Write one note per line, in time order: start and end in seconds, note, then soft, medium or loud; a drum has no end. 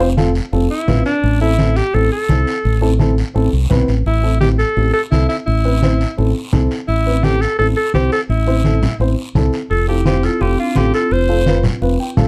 0.00 0.39 F1 medium
0.00 0.06 C5 loud
0.17 0.30 C4 medium
0.17 0.30 F4 medium
0.17 0.30 A4 medium
0.17 high conga medium
0.17 short guiro medium
0.35 short guiro medium
0.53 0.67 F1 loud
0.53 0.65 C4 medium
0.53 0.65 F4 medium
0.53 0.65 A4 medium
0.53 high conga soft
0.53 long guiro medium
0.71 1.05 E4 medium
0.88 1.02 A1 medium
0.88 1.07 C4 medium
0.88 1.07 F4 medium
0.88 1.07 B4 medium
0.88 high conga medium
0.88 low conga medium
0.88 short guiro medium
1.06 1.40 D4 medium
1.06 short guiro medium
1.23 1.80 A1 loud
1.23 high conga soft
1.23 long guiro medium
1.41 1.47 C4 medium
1.41 1.78 E4 medium
1.41 1.47 E4 medium
1.41 1.48 A4 medium
1.59 1.71 C4 medium
1.59 1.71 E4 medium
1.59 1.72 A4 medium
1.59 high conga medium
1.59 short guiro medium
1.76 1.96 G4 medium
1.76 short guiro medium
1.94 2.08 A1 medium
1.94 2.06 C4 medium
1.94 2.06 E4 medium
1.94 2.11 A4 medium
1.94 2.07 A4 medium
1.94 high conga soft
1.94 long guiro medium
2.12 2.80 A4 medium
2.29 2.44 C2 medium
2.29 2.48 C4 medium
2.29 2.48 E4 medium
2.29 2.48 A4 medium
2.29 high conga medium
2.29 short guiro medium
2.47 short guiro medium
2.65 3.21 A1 loud
2.65 high conga soft
2.65 long guiro medium
2.81 2.88 C4 medium
2.81 2.88 E4 medium
2.81 2.89 A4 loud
2.99 3.12 C4 medium
2.99 3.12 E4 medium
2.99 3.13 A4 loud
2.99 high conga medium
2.99 short guiro medium
3.18 short guiro medium
3.35 3.50 A1 medium
3.35 3.47 C4 medium
3.35 3.48 E4 medium
3.35 3.48 A4 medium
3.35 high conga soft
3.35 long guiro medium
3.53 3.69 C2 medium
3.70 3.87 B1 medium
3.70 3.89 C4 medium
3.70 3.89 E4 medium
3.70 3.89 B4 loud
3.70 high conga medium
3.70 low conga medium
3.70 short guiro medium
3.88 4.04 A1 medium
3.88 short guiro medium
4.06 4.63 A1 loud
4.06 4.39 E4 medium
4.06 high conga soft
4.06 long guiro medium
4.23 4.29 C4 medium
4.23 4.30 E4 medium
4.23 4.30 A4 medium
4.41 4.53 C4 medium
4.41 4.54 E4 medium
4.41 4.49 G4 medium
4.41 4.54 G4 medium
4.41 high conga medium
4.41 short guiro medium
4.59 4.92 A4 loud
4.59 short guiro medium
4.76 4.91 A1 medium
4.76 4.89 C4 medium
4.76 4.89 E4 medium
4.76 4.89 G4 medium
4.76 high conga soft
4.76 long guiro medium
4.93 5.02 A4 loud
5.11 5.26 C2 medium
5.11 5.30 C4 medium
5.11 5.28 E4 medium
5.11 5.31 E4 medium
5.11 5.31 A4 medium
5.11 high conga medium
5.11 short guiro medium
5.29 5.37 E4 medium
5.29 short guiro medium
5.46 6.04 A1 medium
5.46 6.13 E4 medium
5.46 high conga soft
5.46 long guiro medium
5.65 5.71 C4 medium
5.65 5.71 E4 medium
5.65 5.71 B4 medium
5.82 5.95 C4 medium
5.82 5.95 E4 medium
5.82 5.95 C5 medium
5.82 high conga medium
5.82 short guiro medium
6.01 short guiro medium
6.17 6.32 A1 medium
6.17 6.30 C4 medium
6.17 6.30 E4 medium
6.17 6.30 A4 medium
6.17 high conga soft
6.17 long guiro medium
6.53 6.67 C2 medium
6.53 6.71 C4 medium
6.53 6.72 E4 medium
6.53 6.72 A4 medium
6.53 high conga medium
6.53 low conga medium
6.53 short guiro medium
6.71 short guiro medium
6.88 7.45 A1 medium
6.88 7.25 E4 medium
6.88 high conga soft
6.88 long guiro medium
7.06 7.12 C4 medium
7.06 7.12 E4 medium
7.06 7.13 B4 medium
7.23 7.36 C4 medium
7.23 7.36 E4 medium
7.23 7.43 G4 loud
7.23 7.37 A4 medium
7.23 high conga medium
7.23 short guiro medium
7.41 7.58 A4 medium
7.41 short guiro medium
7.59 7.73 A1 medium
7.59 7.71 C4 medium
7.59 7.72 E4 medium
7.59 7.67 A4 loud
7.59 7.72 A4 medium
7.59 high conga soft
7.59 long guiro medium
7.77 7.93 A4 medium
7.94 8.09 C2 medium
7.94 8.13 C4 medium
7.94 8.13 E4 medium
7.94 8.11 G4 medium
7.94 8.13 C5 medium
7.94 high conga medium
7.94 short guiro medium
8.12 8.20 A4 medium
8.12 short guiro medium
8.29 8.86 A1 loud
8.29 8.96 E4 medium
8.29 high conga soft
8.29 long guiro medium
8.47 8.53 C4 medium
8.47 8.53 E4 medium
8.47 8.54 C5 medium
8.64 8.77 C4 medium
8.64 8.77 E4 medium
8.64 8.78 A4 medium
8.64 high conga medium
8.64 short guiro medium
8.82 low conga medium
8.82 short guiro medium
9.00 9.14 A1 medium
9.00 9.13 C4 medium
9.00 9.13 E4 medium
9.00 9.13 C5 medium
9.00 high conga soft
9.00 long guiro medium
9.35 9.49 C2 medium
9.35 9.54 C4 medium
9.35 9.54 E4 medium
9.35 9.54 A4 medium
9.35 high conga medium
9.35 low conga medium
9.35 short guiro medium
9.53 short guiro medium
9.70 10.27 F1 medium
9.70 9.87 F4 medium
9.70 9.87 A4 medium
9.70 high conga soft
9.70 long guiro medium
9.88 9.94 C4 medium
9.88 10.05 E4 medium
9.88 9.95 F4 medium
9.88 10.05 G4 medium
9.88 9.95 A4 medium
10.05 10.18 C4 medium
10.05 10.22 C4 medium
10.05 10.18 F4 medium
10.05 10.26 G4 medium
10.05 10.19 C5 medium
10.05 high conga medium
10.05 short guiro medium
10.23 10.41 F4 medium
10.23 10.43 A4 medium
10.23 short guiro medium
10.40 10.55 F1 medium
10.40 10.53 C4 medium
10.40 10.59 C4 medium
10.40 10.53 F4 medium
10.40 10.59 G4 medium
10.40 10.54 A4 medium
10.40 high conga soft
10.40 long guiro medium
10.59 10.75 D4 medium
10.59 10.79 F4 medium
10.75 10.91 A1 loud
10.75 10.94 C4 medium
10.75 10.95 F4 medium
10.75 10.94 G4 medium
10.75 10.95 A4 medium
10.75 high conga medium
10.75 short guiro medium
10.94 11.11 F4 medium
10.94 11.14 A4 loud
10.94 short guiro medium
11.11 11.68 F1 medium
11.11 11.65 F4 medium
11.11 11.65 C5 medium
11.11 high conga soft
11.11 long guiro medium
11.29 11.35 C4 medium
11.29 11.35 F4 medium
11.29 11.36 A4 medium
11.46 11.59 C4 medium
11.46 11.59 F4 medium
11.46 11.60 B4 medium
11.46 high conga medium
11.46 short guiro medium
11.63 low conga medium
11.63 short guiro medium
11.82 11.96 F1 medium
11.82 11.94 C4 medium
11.82 11.94 F4 medium
11.82 11.95 B4 medium
11.82 high conga soft
11.82 long guiro medium
12.00 12.16 G5 medium
12.17 12.28 A1 medium
12.17 12.28 C4 medium
12.17 12.28 F4 medium
12.17 12.28 A4 loud
12.17 12.28 F5 medium
12.17 high conga medium
12.17 low conga medium
12.17 short guiro medium